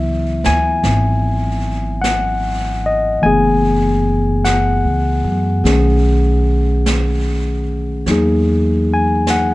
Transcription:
Already playing: C#2 E3 F#3 B3 E4 E5
0.44 D2 G#5, snare
0.83 G#1, brush sweep, snare
2.02 F#5, brush sweep, snare, hi-hat pedal
2.86 D#5
3.22 F#1 E3 A3 B3 G#5, brush sweep
3.26 G#4
4.45 F#5, brush sweep, snare, hi-hat pedal
4.85 C#2
5.24 F#2
5.64 B1 D#3 A3 C#4 G#4, brush sweep, snare
6.86 brush sweep, snare, hi-hat pedal
8.06 E2 F#3 A#3 D#4, brush sweep, snare
8.11 G#4
8.94 G#5
9.27 F#5, brush sweep, snare, hi-hat pedal

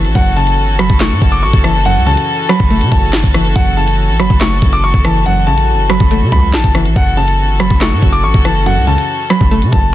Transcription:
Already playing: F#2 E3 F#3 A3 C#4 F#4 A4
0.05 A1, closed hi-hat
0.15 F#1 F#2 E3 F#5, kick, closed hi-hat
0.36 C#3 A5
0.47 closed hi-hat
0.58 G1
0.74 F#1
0.79 F#3 B5, cross-stick, closed hi-hat
0.90 F#1, kick
1.00 A3 C#6, snare, clap, closed hi-hat
1.11 A2
1.21 F#1 F#2, kick
1.32 D6, closed hi-hat
1.43 A1 C#6
1.53 F#1, kick
1.64 E3 A5, cross-stick, closed hi-hat
1.85 F#2 F#5, closed hi-hat
1.96 C#2
2.06 C#3 A5
2.17 closed hi-hat
2.49 F#3 B5, cross-stick
2.60 F#1, kick
2.70 A3, closed hi-hat
2.81 C#3, closed hi-hat
2.91 F#1 F#2 A5, kick, closed hi-hat
3.13 G1, snare, clap
3.24 F#1, kick, closed hi-hat
3.34 E3, cross-stick, open hi-hat
3.45 closed hi-hat
3.56 F#1 F#2 F#5, kick, closed hi-hat
3.77 C#3 A5
3.88 closed hi-hat
4.09 A1
4.19 F#1 F#3 B5, cross-stick, closed hi-hat
4.30 F#1, kick
4.40 A3 C#6, snare, clap, closed hi-hat
4.62 F#1 F#2, kick
4.73 D6, closed hi-hat
4.84 C#6
4.94 F#1, kick
5.05 E3 A5, cross-stick, closed hi-hat
5.26 F#2 F#5, closed hi-hat
5.47 A1 C#3 A5
5.58 closed hi-hat
5.74 F#1
5.90 F#3 B5, cross-stick
6.00 F#1, kick
6.11 A3, closed hi-hat
6.21 C#3
6.32 C#2 F#2 B5, kick, closed hi-hat
6.53 A1 A5, snare, clap
6.64 F#1, kick, closed hi-hat
6.75 E3, cross-stick
6.85 A1, closed hi-hat
6.96 F#1 F#2 C#4 F#4 A4 F#5, kick, closed hi-hat
7.17 C#3 A5
7.28 closed hi-hat
7.38 G1
7.54 F#1
7.60 F#3 B5, cross-stick, closed hi-hat
7.70 F#1, kick
7.81 A3 C#6, snare, clap, closed hi-hat
7.92 A2
8.02 F#1 F#2, kick
8.12 D6, closed hi-hat
8.24 A1 C#6
8.34 F#1, kick
8.45 E3 A5, cross-stick, closed hi-hat
8.66 F#2 F#5, closed hi-hat
8.77 C#2
8.87 C#3 A5
8.98 closed hi-hat
9.30 F#3 B5, cross-stick
9.41 F#1, kick
9.51 A3, closed hi-hat
9.62 C#3, closed hi-hat
9.72 F#1 F#2 A5, kick, closed hi-hat

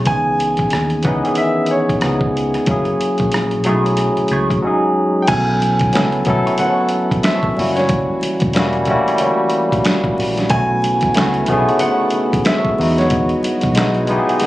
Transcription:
0.05 C#2 E3 B3 C#4 D#4 G#5, kick, closed hi-hat
0.11 G#4
0.40 closed hi-hat
0.57 kick, closed hi-hat
0.70 D#2, cross-stick, closed hi-hat
0.90 closed hi-hat
1.03 C#2 E3 B3 C#4 E4 G#4 D#5, kick, closed hi-hat
1.07 D#4 B4
1.23 D#3 E3 B3 C#4, closed hi-hat
1.27 G#4
1.35 E5, closed hi-hat
1.66 closed hi-hat
1.71 C#5
1.89 kick, closed hi-hat
2.01 C#2 F3 B3 C#4 D#4, cross-stick, closed hi-hat
2.06 G#4
2.21 kick
2.37 closed hi-hat
2.54 cross-stick, closed hi-hat
2.66 F#1 F#3 A#3 C#4 E4, kick, closed hi-hat
2.71 G#4
2.85 closed hi-hat
3.01 closed hi-hat
3.18 A#1, kick, closed hi-hat
3.32 cross-stick, closed hi-hat
3.51 closed hi-hat
3.64 B1 F#3 A3 C#4 E4 G#4 C#5, closed hi-hat
3.68 D#4 G#4
3.74 E4
3.86 closed hi-hat
3.97 cross-stick, closed hi-hat
4.17 muted fingered electric bass stroke, closed hi-hat
4.28 C#2 A3 E4, closed hi-hat
4.32 G#4 C#5
4.50 kick, closed hi-hat
4.62 F#3 G#3 C#4 D#4
4.67 G#4
5.22 G5
5.27 B1 F#3 B3 C#4 E4 G#5, kick, closed hi-hat, crash, muted conga
5.32 A4
5.60 closed hi-hat, muted conga, high conga
5.79 kick, closed hi-hat, high conga
5.93 C#2 F#3 B3 C#4 E4, finger snap, snare, closed hi-hat, muted conga, high conga
5.97 A4
6.12 closed hi-hat
6.25 B1 F#3 B3 C#4 E4, kick, closed hi-hat, low conga
6.30 A4
6.46 B3 E4 A4 C#5, closed hi-hat
6.58 B3 E4 A4 C#5 F#5, closed hi-hat, muted conga, low conga
6.89 closed hi-hat
7.11 kick, closed hi-hat, high conga
7.23 B3 E4 A4 C#5 E5, finger snap, snare, closed hi-hat, muted conga
7.43 kick, high conga
7.56 F#1 E3 G3 A#3 C#4 E4 F#4, open hi-hat, muted conga
7.61 F#4
7.76 C#5, snare, closed hi-hat
7.89 kick, closed hi-hat, muted conga
8.21 closed hi-hat, muted conga, high conga
8.40 E1, kick, closed hi-hat, high conga
8.53 G3 A#3 C#4, finger snap, snare, closed hi-hat, muted conga, high conga
8.58 E4 F#4
8.73 closed hi-hat
8.85 G3 A3, kick, closed hi-hat, low conga
8.89 C#4 E4 F#4
8.95 A#3
9.08 A#3 E4 G4 C#5, closed hi-hat
9.18 A#3 E4 G4 C#5, closed hi-hat, muted conga, low conga
9.50 closed hi-hat, muted conga
9.72 kick, closed hi-hat, high conga
9.85 finger snap, snare, closed hi-hat, muted conga
10.04 kick, high conga
10.18 A#1, open hi-hat, muted conga
10.38 snare, closed hi-hat
10.50 B1 C#3 A3 B3 C#4 E4 G#5, kick, closed hi-hat, muted conga
10.54 F#4
10.82 closed hi-hat, muted conga, high conga
11.01 kick, closed hi-hat, high conga
11.14 C#2 A3 B3 C#4, finger snap, snare, closed hi-hat, muted conga, high conga
11.18 E4 F#4
11.34 closed hi-hat
11.46 B1 A3 B3 C#4, kick, closed hi-hat, muted conga, low conga
11.51 D#4 G#4
11.58 E4
11.68 B3 E4 A4 C#5, closed hi-hat
11.79 B3 E4 A4 C#5 F#5, closed hi-hat, low conga
12.10 closed hi-hat, muted conga
12.33 kick, closed hi-hat, high conga
12.45 B3 E4 A4 C#5 E5, finger snap, snare, closed hi-hat, muted conga
12.65 kick, high conga
12.78 E2 F#3 G#3 B3 D#4 E4 F#4 D#5, open hi-hat, muted conga
12.83 F#4
12.98 C#5, snare, closed hi-hat
13.10 kick, closed hi-hat
13.29 closed hi-hat
13.43 closed hi-hat, muted conga, high conga
13.61 B1, kick, closed hi-hat, high conga
13.75 G#3 B3 D#4, finger snap, snare, closed hi-hat, high conga
13.79 E4 F#4
13.94 closed hi-hat
14.07 G#3 B3 D#4, closed hi-hat, muted conga, low conga
14.11 E4 G4
14.19 G#4
14.29 B3 F#4 G#4 D#5, closed hi-hat
14.40 B3 F#4 G#4 D#5, snare, closed hi-hat, muted conga, low conga

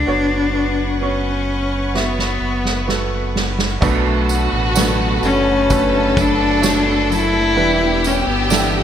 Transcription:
Already playing: D4 F#5
0.07 F#1 B3 F#4 B4 C#5 C#6
0.53 B3 F#4 B4
1.01 B3 C#4 F#4 C#5
1.94 B3 F#4 E5, snare
2.19 snare
2.41 F#1
2.65 snare
2.87 B3 F#4 A4, snare
3.36 snare
3.59 snare
3.81 B1 B2 F#3 A3 D4 F#4 B4 A5, kick, crash, tambourine
4.04 A3 D4 F#4
4.29 ride, tambourine
4.53 A1, ride
4.75 B2 D3 F#3 A3 B3 D4 F#4 B4, snare, ride, tambourine
5.21 F#1 F#3 A3 C#4 D4 F#4, ride, tambourine
5.46 A3 F#4
5.69 D3 A3 F#4 A4 B4, kick, ride, tambourine
5.92 A3 D4 F#4
6.15 F#3 A3 D4 F#4, kick, ride, tambourine
6.21 D4
6.62 B2 F#3 A3 D4 F#4 C#5, snare, tambourine
6.86 A3 D4 F#4
7.09 F#3 A3 D4 E4 F#4, ride, tambourine
7.33 A3 D4 F#4
7.56 E1 E3 G3 B3 D4 E4 G4 B4 G5 E6, ride
7.80 B3 D4 G4
8.04 C#4, ride, tambourine
8.27 G1 B3, ride
8.50 E3 G3 B3 D4 E4 G4 A4, snare, tambourine

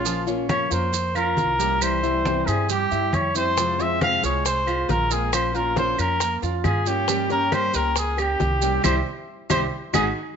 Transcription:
Already playing: A#1 F4
0.04 F3 A#3 C#4 F4, high conga, maracas
0.27 A#3 C#4 F4 C#5, high conga, maracas
0.48 F3 A#3 C#4 F4 C#5, high conga, claves, maracas
0.70 F2 A#3 C#4 F4 A#4 C5, high conga, maracas
0.93 muted nylon-string guitar stroke, high conga, maracas
1.15 A#3 C#4 F4 A#4 F5, high conga, claves, maracas
1.37 C2, high conga, maracas
1.59 G3 A#3 C#4 F4 G4, high conga, maracas
1.81 C3 E3 G3 C4 E4 C5, high conga, claves, maracas
2.03 E3 G3 C4 E4 E5, high conga, maracas
2.25 C3 E3 G3 C4 E4 C5, high conga, maracas
2.47 G2 G3 C4 E4 G#4, claves, maracas
2.69 G3 G4, muted nylon-string guitar stroke, high conga, maracas
2.91 G2 G3 C4 E4 E5, high conga, maracas
3.13 F2 C#5, high conga, claves, maracas
3.35 G3 C4 E4 C5, high conga, maracas
3.57 C3 F3 G#3 C4 F4, high bongo, high conga, maracas
3.79 F3 G#3 C4 F4 C5 E5, high bongo, high conga, maracas
4.01 C3 F3 G#3 C4 F4 F5, high bongo, high conga, claves, maracas
4.23 C2 G#3 C4 F4 G#4 C#5, high bongo, high conga, maracas
4.45 C5, muted nylon-string guitar stroke, high bongo, high conga, maracas
4.66 G#3 C4 F4 F5, high bongo, high conga, claves, maracas
4.89 A#1 A#4, high bongo, low bongo, high conga, maracas
5.11 G#3 A#3 C4 F4 G#4 A#4, high conga, maracas
5.32 F3 A#3 C#4 F4 C5, high bongo, high conga, claves, maracas
5.54 A#3 C#4 F4 A#4 F5, high bongo, high conga, maracas
5.76 F3 A#3 C#4 F4 C5 C#5, high bongo, high conga, maracas
5.98 F2 A#3 C#4 F4 A#4, high bongo, claves, maracas
6.20 A#3 A#4, muted nylon-string guitar stroke, high bongo, high conga, maracas
6.42 F2 A#3 C#4 F4 F5, high bongo, high conga, maracas
6.64 G2 G#4, high bongo, low bongo, high conga, claves, maracas
6.86 A#3 C#4 F4 G4 C#5, high conga, maracas
7.08 G3 A#3 C#4 G4, high bongo, high conga, maracas
7.30 A#3 C#4 G4 A#4 C#5, high bongo, high conga, maracas
7.52 G3 A#3 C#4 G4 C5, high bongo, high conga, claves, maracas
7.74 C#2 A#3 C#4 G4 A#4, high bongo, high conga, maracas
7.96 G#4, muted nylon-string guitar stroke, high bongo, high conga, maracas
8.17 A#3 C#4 G4 G5, high bongo, high conga, claves, maracas
8.40 C2, high bongo, low bongo, high conga, maracas
8.61 G3 A#3 C#4 G4, high conga, maracas
8.84 C2 G3 C4 E4 G4 C5, low bongo, high conga, claves, maracas
9.50 C2 G3 C4 E4 G4 C5, low bongo, high conga, claves, maracas
9.93 G#1 G#3 C4 D#4 F#4 G#4, low bongo, high conga, claves, maracas

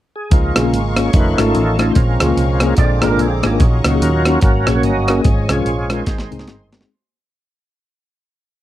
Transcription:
0.16 G#4
0.31 C#2 C#3 F3 G#3 A#3 D#4 F4 F5 G#5 A#5 C#6, kick, closed hi-hat
0.55 A#1 A#3 C#4 F4 G#4, cross-stick, closed hi-hat
0.63 A#3 C#4 F4 A#4
0.73 G#1, closed hi-hat
0.96 A#3 C#4 F4 G#4 C#5, cross-stick, closed hi-hat
1.13 F1 D#3 A3 C#4 D#4 F4 B4 D#5 A5, kick, closed hi-hat
1.38 G#1 A3 C#4 D#4 F4 A4, cross-stick, closed hi-hat
1.46 A3 C#4 D#4 F4
1.55 A1, closed hi-hat
1.78 A3 C#4 D#4 F4, cross-stick, closed hi-hat
1.86 A3 C#4 D#4 F4
1.91 F3 C5
1.95 A#1 A#2 G#3 C4 C#4 F4 A#4 F5 G#5 A#5 C#6, kick, closed hi-hat
2.20 C#2 A#3 C#4 F4 G#4, cross-stick, closed hi-hat
2.28 A#3 C#4 F4 A#4
2.37 C2, closed hi-hat
2.60 A#3 C#4 F4 G#4, cross-stick, closed hi-hat
2.77 A#1 A#2 D3 G#3 F4 D5 G#5 D6, kick, closed hi-hat
2.81 C4
3.02 A#3 D4 F4 G#4 A#4, cross-stick, closed hi-hat
3.11 A#3 D4 F4 A#4
3.19 A#1 C4 G#4, closed hi-hat
3.43 G#1 A#3 C#4 D4 D#4 F4 G#4, cross-stick, closed hi-hat
3.52 A#3 D4 F4 A#4
3.60 A#1 A#2 F#3 C#4 F4 D#5 C#6, kick, closed hi-hat
3.84 C#2 A#3 C#4 D#4 F#4, cross-stick, closed hi-hat
3.93 A#3 C#4 D#4 G#4
4.01 D#2 C#4 F#4 A#4, closed hi-hat
4.25 A#3 C#4 D#4 F#4, cross-stick, closed hi-hat
4.41 G#1 G#2 F#3 A#3 C#4 F#4 A#4 C#5 G#5, kick, closed hi-hat
4.67 A#1 A#3 C#4 F#4 G#4 C#5, cross-stick, closed hi-hat
4.75 A#3 C#4 F#4 A#4
4.83 G1 D#5, closed hi-hat
5.08 A#3 C#4 F#4 G#4 A#4 D#5, cross-stick, closed hi-hat
5.18 A#3 C#4 F#4 A#4
5.24 G#1 G#2 F3 G#3 C#4 F5 C#6, kick, closed hi-hat
5.49 C2 G#3 C#4 F4 G#4 C#5, cross-stick, closed hi-hat
5.53 F4
5.57 G#3 C#4 F4 A#4
5.65 A#1, closed hi-hat
5.83 C#5
5.90 G#3 C#4 D#4 F4 G#4 A#4 C5, cross-stick, closed hi-hat
6.06 G#1 G#2 D#3 G#3 C4 C5 D#5 C6, kick, snare, closed hi-hat
6.18 snare
6.31 C2 G#3 C4 D#4 G#4, closed hi-hat
6.39 G#3 C4 D#4 G#4, snare
6.47 G1, snare, closed hi-hat
6.72 G#3 C4 D#4 A#4, snare, closed hi-hat
6.80 G#3 C4 D#4 G#4, snare

